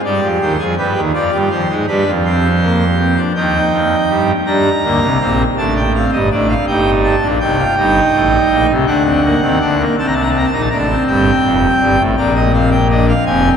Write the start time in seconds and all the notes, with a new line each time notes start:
0.05 G2 G3 G4 D5
0.22 F2 F3
0.41 D#2 D#3 C5
0.59 F2 F3 G#4
0.78 G2 G3 G4 B4
0.96 D#2 D#3
1.14 F2 F3 F4 D5
1.33 G2 G3
1.51 F2 F3 C5
1.70 G#2 G#3 D#4
1.88 G2 G3 D4 B4
2.06 F2 F3
2.25 C4 C5
2.61 A#3
2.98 C4
3.17 D4
3.36 D#2 D#3 D#4 G5
3.72 F2 F3
4.09 G2 G3
4.46 G2 G3 D4 A#5
4.83 D2 D3 A#3
5.01 C2 C3
5.21 A#1 A#2 C4
5.58 A1 A2 D4 A5
5.77 G5
5.95 C4 F5
6.13 G1 G2 D#5
6.31 A1 A2 D4 D5
6.49 F5
6.68 G1 G2 D#4 G5
7.04 A5
7.22 A#1 A#2 D4
7.40 C2 C3 D#4 G5
7.58 F4
7.77 G1 G2 D#4
8.14 A1 A2
8.50 A#1 A#2
8.69 C2 C3
8.87 D2 D3 D4 F#5
9.05 C4
9.24 A#3
9.42 D#2 D#3 C4
9.61 D2 D3 D4
9.80 A#3
9.99 C2 C3 C4 A5
10.07 A#5
10.14 D4 A5
10.21 A#5
10.30 A5
10.34 C4 A#5
10.46 A5
10.51 A#1 A#2 D#4 A#5
10.61 A5
10.70 A1 A2 D4 A#5
10.78 A5
10.90 C4
11.08 G1 G2 G5
11.44 F1 F2
11.80 G1 G2
11.99 A1 A2
12.17 A#1 A#2 A#3 D5
12.36 D#5
12.54 C4 F5
12.71 G5
12.90 D4 D#5
13.09 F5
13.26 F1 F2 C4 G#5